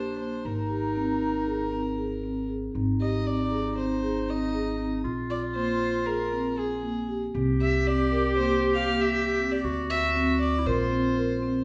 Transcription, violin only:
Already playing: C5
0.19 C5
0.46 A#4
3.01 D#5
3.27 D5
3.78 C5
4.30 D#5
5.30 D5
5.55 C5
6.06 A#4
6.58 G#4
7.61 E5
7.87 D5
8.37 C5
8.74 F5
9.01 E5
9.52 D5
9.90 E5
10.42 D5
10.66 C5

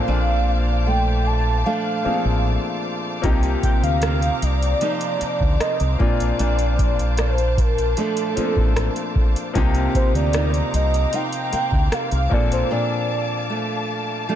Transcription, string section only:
Already playing: C5 F5 A5 D6
3.23 C5 A#5
6.00 A5
9.55 F5 A#5 D6
12.31 A5

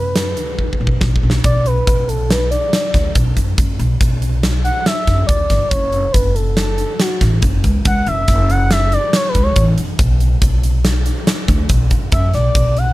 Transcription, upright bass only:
Already playing: F#2
0.38 D2
0.81 B1
1.01 B1
1.23 B1
1.44 B1
1.87 B1
2.94 D2
3.15 B1
3.37 F#2
3.58 F#2
3.79 B1
4.01 B1
5.07 F#2
5.29 D2
5.50 G1
5.71 F#1
6.14 F#1
7.21 A1
7.43 F#1
7.64 C#2
7.86 C#2
8.07 F#1
8.28 F#1
9.35 C#2
9.56 A1
9.99 B1
10.42 B1
11.48 D2
11.70 B1
11.91 F#2
12.12 F#2
12.34 B1
12.55 B1

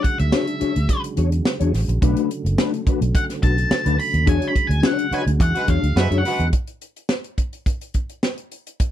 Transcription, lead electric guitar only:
0.03 F#5
0.20 E5
3.15 F#5
3.43 A5
4.00 B5
4.29 G#5
4.48 B5
4.67 G#5
4.86 F#5
5.14 G#5
5.42 F#5
5.70 F5
5.99 E5
6.18 F#5

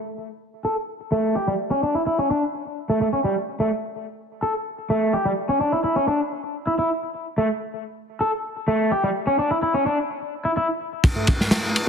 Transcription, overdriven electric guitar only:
0.65 A4
1.12 A3
1.35 G4
1.48 G3
1.71 C#4
1.83 D4
1.95 E4
2.07 E4
2.19 C#4
2.30 D4
2.90 A3
3.01 A3
3.13 C#4
3.24 G3
3.60 A3
4.42 A4
4.90 A3
5.13 G4
5.25 G3
5.49 C#4
5.61 D4
5.72 E4
5.84 E4
5.96 C#4
6.08 D4
6.67 E4
6.79 E4
7.38 A3
8.21 A4
8.68 A3
8.92 G4
9.04 G3
9.27 C#4
9.39 D4
9.51 E4
9.63 E4
9.74 C#4
9.86 D4
10.45 E4
10.57 E4
11.16 A3

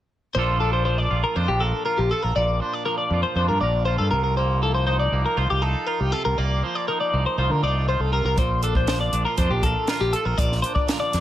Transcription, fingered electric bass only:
0.36 A#1
1.11 A#1
1.36 F2
1.49 A#1
1.99 A#1
2.24 A#1
2.36 A#1
3.10 F2
3.35 F2
3.49 G2
3.61 A#1
4.00 G2
4.11 C2
5.12 C2
5.37 C2
5.51 C2
6.00 C2
6.26 C2
6.38 C2
7.13 C2
7.38 C2
7.50 D3
7.63 C2
8.00 C2
8.25 C2
8.38 A#1
9.13 A#1
9.38 F2
9.50 A#1
10.01 A#1
10.25 A#1
10.38 A#1
11.14 F2

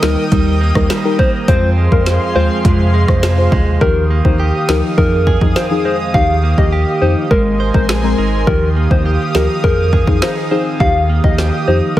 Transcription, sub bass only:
0.03 D2
0.32 D#2
0.75 D#2
1.48 F2
1.92 F2
2.36 D#2
2.65 F2
3.08 F2
3.52 D#2
3.81 D#2
4.25 D#2
4.69 D2
4.98 F2
5.41 F2
6.14 D#2
6.58 D#2
7.02 F2
7.31 G#1
7.74 A#1
8.18 G#1
8.47 D#2
8.91 D#2
9.35 D2
9.64 F2
10.07 F2
10.80 D#2
11.24 D#2
11.68 F2

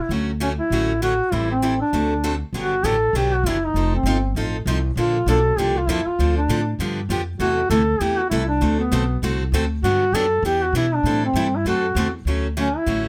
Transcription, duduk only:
0.01 E4
0.42 C#4
0.60 E4
1.03 F#4
1.33 E4
1.51 C4
1.81 D4
2.55 F#4
2.86 A4
3.17 G4
3.35 F#4
3.47 E4
3.66 D#4
3.95 C4
4.99 F4
5.29 A4
5.58 G4
5.77 F4
5.89 E4
6.07 F4
6.37 D4
7.41 F#4
7.70 A4
8.01 G4
8.19 F#4
8.30 E4
8.48 D4
8.79 B3
9.84 F#4
10.15 A4
10.46 G4
10.63 F#4
10.77 E4
10.95 D4
11.26 C4
11.56 E4
11.68 F#4
12.59 C#4
12.77 E4

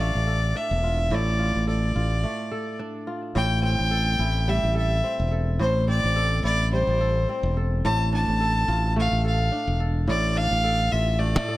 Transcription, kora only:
Already playing: A2 C4 F4 A4
0.00 A3
0.28 A4
0.55 D4
0.84 F4
1.11 A2 A4
1.39 F4
1.67 A4
1.96 F4
2.24 A3
2.51 A4
2.79 D4
3.07 F4
3.35 A2
3.63 C4
3.91 A4
4.19 E4
4.48 G3
4.75 A4
5.04 C4
5.31 A4
5.59 A2
5.88 C4
6.16 A4
6.44 E4
6.73 G3
7.01 A4
7.29 C4
7.57 A4
7.85 A2
8.13 D4
8.40 A4
8.68 F4
8.96 A3
9.25 A4
9.52 D4
9.80 A4
10.08 A2
10.36 D4
10.64 A4
10.92 F4
11.19 A3
11.48 A4

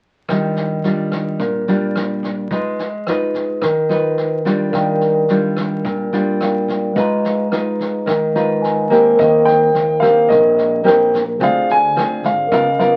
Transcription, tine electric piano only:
4.70 A#4 D5 F5
4.75 G5
6.40 A#4 D5 F5 G5
6.94 G#3 B4 D#5
6.98 F5 A#5
8.34 G#3 B4 D#5 F5 A#5
8.62 G#5
8.91 D#5
9.16 A#4 C5 F5
9.21 G5
11.38 G#4 C5
11.42 D5 F5
12.47 A#4
12.51 D#5 F5

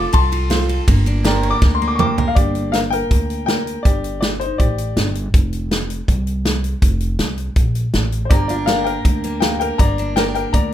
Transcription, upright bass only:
0.14 C2
0.88 G1
1.62 D2
2.37 G1
3.11 D2
3.85 G1
4.60 A1
4.96 G1
5.34 F1
6.08 C2
6.82 F1
7.19 C2
7.56 A#1
7.94 A1
8.30 G1
9.05 D2
9.79 G1
10.54 D2

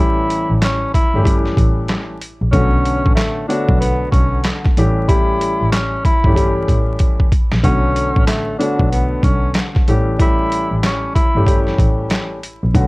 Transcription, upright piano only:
Already playing: E3 G3 A3 C#4 G4
1.15 E3 G3 A3 C#4 G4
1.23 E3 G3 A3 C#4 G4
2.53 D3 A3 B3 C#4 F#4
3.49 D3 A3 B3 F#4 C#5
4.77 E3 G3 A3 C#4 G4
5.07 E3 G3 A3 C#4 G4
6.25 E3 G3 A3 C#4 G4
6.34 E3 G3 A3 C#4 G4
7.63 D3 A3 B3 C#4 F#4
8.59 D3 A3 B3 F#4 C#5
9.88 E3 G3 A3 C#4 G4
10.18 E3 G3 A3 C#4 G4
11.36 E3 G3 A3 C#4 G4
11.45 E3 G3 A3 C#4 G4
12.74 D3 A3 B3 C#4 F#4

